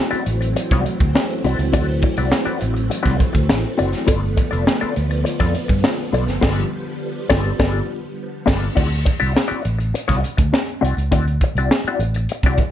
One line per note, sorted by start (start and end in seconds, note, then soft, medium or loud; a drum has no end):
0.00 4.05 E3 medium
0.00 4.05 F#3 medium
0.00 6.39 A3 medium
0.00 4.05 C4 medium
0.11 0.24 C4 medium
0.11 0.24 E4 medium
0.11 0.25 F#4 medium
0.11 0.25 D5 medium
0.11 muted fingered electric bass stroke soft
0.11 closed hi-hat soft
0.26 0.53 A1 medium
0.26 muted clean electric guitar stroke soft
0.26 closed hi-hat medium
0.41 muted clean electric guitar stroke soft
0.41 closed hi-hat medium
0.56 muted clean electric guitar stroke soft
0.56 closed hi-hat medium
0.71 0.85 C2 medium
0.71 0.85 C4 medium
0.71 0.85 E4 medium
0.71 0.86 F#4 medium
0.71 0.86 D5 medium
0.71 kick medium
0.71 snare soft
0.71 closed hi-hat soft
0.86 muted clean electric guitar stroke soft
0.86 closed hi-hat medium
1.00 1.14 D2 medium
1.00 muted clean electric guitar stroke soft
1.00 kick loud
1.00 closed hi-hat medium
1.15 muted clean electric guitar stroke soft
1.15 snare loud
1.31 closed hi-hat soft
1.44 1.58 C2 medium
1.44 1.57 C4 medium
1.44 1.57 E4 medium
1.44 1.57 F#4 medium
1.44 1.57 D5 medium
1.44 closed hi-hat medium
1.59 1.72 C#2 medium
1.59 muted clean electric guitar stroke soft
1.59 closed hi-hat medium
1.73 2.00 D2 loud
1.73 1.89 C4 medium
1.73 1.89 E4 medium
1.73 1.88 F#4 medium
1.73 1.87 D5 loud
1.73 kick loud
1.73 closed hi-hat loud
1.88 muted clean electric guitar stroke soft
2.02 muted clean electric guitar stroke soft
2.02 kick loud
2.02 closed hi-hat medium
2.17 2.31 C2 medium
2.17 2.30 C4 medium
2.17 2.30 E4 medium
2.17 2.30 F#4 medium
2.17 2.30 D5 medium
2.17 closed hi-hat soft
2.32 muted clean electric guitar stroke soft
2.32 snare loud
2.45 2.59 C4 medium
2.45 2.59 E4 medium
2.45 2.60 F#4 medium
2.45 2.60 D5 medium
2.45 muted fingered electric bass stroke soft
2.45 closed hi-hat soft
2.60 2.88 A1 loud
2.60 muted clean electric guitar stroke soft
2.60 closed hi-hat medium
2.74 muted clean electric guitar stroke soft
2.74 closed hi-hat medium
2.90 muted clean electric guitar stroke soft
2.90 closed hi-hat medium
3.03 3.19 C2 medium
3.03 3.16 C4 medium
3.03 3.17 E4 medium
3.03 3.18 F#4 medium
3.03 3.18 D5 medium
3.03 kick medium
3.03 snare soft
3.03 closed hi-hat soft
3.18 muted clean electric guitar stroke soft
3.18 kick medium
3.18 closed hi-hat medium
3.33 3.48 D2 medium
3.33 muted clean electric guitar stroke soft
3.33 kick loud
3.33 closed hi-hat medium
3.49 3.63 A1 loud
3.49 muted clean electric guitar stroke soft
3.49 snare loud
3.64 closed hi-hat soft
3.78 3.93 F#1 medium
3.78 3.90 C4 medium
3.78 3.90 E4 medium
3.78 3.91 F#4 medium
3.78 3.91 D5 medium
3.78 closed hi-hat medium
3.93 muted clean electric guitar stroke soft
3.93 snare soft
3.93 closed hi-hat soft
4.07 4.35 G1 medium
4.07 8.74 D3 medium
4.07 8.74 F3 medium
4.07 4.23 B3 medium
4.07 8.74 B3 medium
4.07 4.22 F4 loud
4.07 4.22 A4 medium
4.07 4.21 D5 medium
4.07 kick loud
4.07 closed hi-hat loud
4.22 muted clean electric guitar stroke soft
4.37 muted clean electric guitar stroke soft
4.37 kick medium
4.37 closed hi-hat medium
4.51 4.66 F1 medium
4.51 4.64 B3 medium
4.51 4.64 F4 medium
4.51 4.64 A4 medium
4.51 4.64 D5 medium
4.51 closed hi-hat soft
4.67 snare loud
4.81 4.94 B3 medium
4.81 4.95 F4 medium
4.81 4.95 A4 medium
4.81 4.95 D5 medium
4.81 muted fingered electric bass stroke soft
4.95 5.23 D2 medium
4.95 muted clean electric guitar stroke soft
4.95 closed hi-hat medium
5.11 muted clean electric guitar stroke soft
5.11 closed hi-hat medium
5.24 muted clean electric guitar stroke soft
5.24 closed hi-hat medium
5.40 5.54 F2 loud
5.40 5.54 B3 medium
5.40 5.54 F4 medium
5.40 5.55 A4 medium
5.40 5.55 D5 medium
5.40 kick medium
5.40 snare soft
5.40 closed hi-hat soft
5.55 muted clean electric guitar stroke medium
5.55 closed hi-hat medium
5.68 5.83 G2 medium
5.68 muted clean electric guitar stroke soft
5.68 kick loud
5.68 closed hi-hat medium
5.84 muted clean electric guitar stroke soft
5.84 snare loud
5.99 closed hi-hat soft
6.13 6.26 B1 loud
6.13 6.25 B3 medium
6.13 6.25 F4 medium
6.13 6.26 A4 medium
6.13 6.26 D5 medium
6.13 closed hi-hat medium
6.27 6.42 F#1 medium
6.27 muted clean electric guitar stroke medium
6.27 snare soft
6.27 closed hi-hat medium
6.41 6.62 G1 loud
6.41 8.75 G3 medium
6.41 6.62 B3 loud
6.41 6.62 F4 loud
6.41 6.62 A4 medium
6.41 6.63 D5 loud
6.41 kick loud
6.41 snare loud
6.41 crash medium
7.30 7.50 G1 loud
7.30 7.51 B3 loud
7.30 7.51 F4 medium
7.30 7.50 A4 loud
7.30 7.50 D5 medium
7.30 kick loud
7.30 snare loud
7.59 7.80 G1 loud
7.59 7.80 B3 loud
7.59 7.80 F4 loud
7.59 7.80 A4 loud
7.59 7.80 D5 loud
7.59 kick loud
7.59 snare loud
8.46 8.68 G1 loud
8.46 8.67 B3 loud
8.46 8.67 F4 loud
8.46 8.67 A4 medium
8.46 8.67 D5 loud
8.46 kick loud
8.46 snare loud
8.46 crash medium
8.75 9.04 D2 loud
8.75 8.92 C4 medium
8.75 8.90 E4 medium
8.75 8.90 F#4 medium
8.75 8.89 D5 medium
8.75 kick loud
8.75 crash medium
8.90 muted clean electric guitar stroke soft
8.90 closed hi-hat soft
9.05 muted clean electric guitar stroke soft
9.05 kick loud
9.05 closed hi-hat medium
9.20 9.35 C2 medium
9.20 9.33 C4 medium
9.20 9.33 E4 medium
9.20 9.33 F#4 medium
9.20 9.33 D5 medium
9.20 closed hi-hat soft
9.35 muted clean electric guitar stroke soft
9.35 snare loud
9.48 9.63 C4 medium
9.48 9.63 E4 medium
9.48 9.63 F#4 medium
9.48 9.64 D5 medium
9.48 muted fingered electric bass stroke soft
9.48 closed hi-hat soft
9.64 9.92 A1 medium
9.64 muted clean electric guitar stroke soft
9.64 closed hi-hat medium
9.78 muted clean electric guitar stroke soft
9.78 closed hi-hat medium
9.94 muted clean electric guitar stroke soft
9.94 closed hi-hat medium
10.08 10.22 C2 medium
10.08 10.20 C4 medium
10.08 10.20 E4 medium
10.08 10.21 F#4 medium
10.08 10.21 D5 medium
10.08 kick medium
10.08 snare soft
10.08 closed hi-hat soft
10.21 muted clean electric guitar stroke medium
10.21 closed hi-hat medium
10.37 10.52 D2 medium
10.37 muted clean electric guitar stroke medium
10.37 kick loud
10.37 closed hi-hat medium
10.53 muted clean electric guitar stroke soft
10.53 snare loud
10.69 closed hi-hat soft
10.81 10.96 C2 medium
10.81 10.94 C4 medium
10.81 10.94 E4 medium
10.81 10.94 F#4 medium
10.81 10.94 D5 medium
10.81 closed hi-hat medium
10.97 11.10 C#2 medium
10.97 muted clean electric guitar stroke soft
10.97 closed hi-hat medium
11.12 11.38 D2 loud
11.12 11.27 C4 medium
11.12 11.27 E4 medium
11.12 11.27 F#4 medium
11.12 11.25 D5 medium
11.12 kick loud
11.12 closed hi-hat loud
11.26 muted clean electric guitar stroke soft
11.26 closed hi-hat soft
11.41 muted clean electric guitar stroke soft
11.41 kick medium
11.41 closed hi-hat medium
11.55 11.69 C2 medium
11.55 11.69 C4 medium
11.55 11.69 E4 medium
11.55 11.69 F#4 medium
11.55 11.69 D5 medium
11.55 closed hi-hat soft
11.71 muted clean electric guitar stroke soft
11.71 snare loud
11.84 12.01 C4 medium
11.84 12.01 F#4 medium
11.84 12.02 D5 medium
11.84 muted fingered electric bass stroke soft
11.84 closed hi-hat soft
11.89 12.01 E4 medium
11.99 12.26 A1 medium
11.99 muted clean electric guitar stroke soft
11.99 closed hi-hat medium
12.14 muted clean electric guitar stroke soft
12.14 closed hi-hat medium
12.29 muted clean electric guitar stroke soft
12.29 closed hi-hat medium
12.43 12.57 C2 medium
12.43 12.60 C4 medium
12.43 12.60 E4 medium
12.43 12.60 F#4 medium
12.43 12.60 D5 medium
12.43 kick medium
12.43 snare soft
12.43 closed hi-hat soft
12.58 kick medium
12.58 closed hi-hat medium
12.63 muted clean electric guitar stroke soft